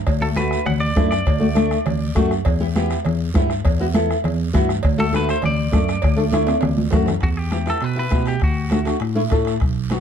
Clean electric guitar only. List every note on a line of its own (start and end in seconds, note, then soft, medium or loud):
0.22 0.27 A4 medium
0.37 0.67 B4 medium
0.66 0.71 F#5 loud
0.80 1.10 D5 loud
1.11 2.26 D5 medium
5.00 5.13 A4 medium
5.16 5.30 B4 medium
5.30 5.43 C5 medium
5.45 6.89 D5 loud
7.23 7.28 F#4 medium
7.37 7.68 G4 medium
7.70 7.84 A4 medium
7.84 7.98 B4 loud
7.99 8.26 B4 medium
8.28 8.41 G4 medium
8.44 8.84 F#4 medium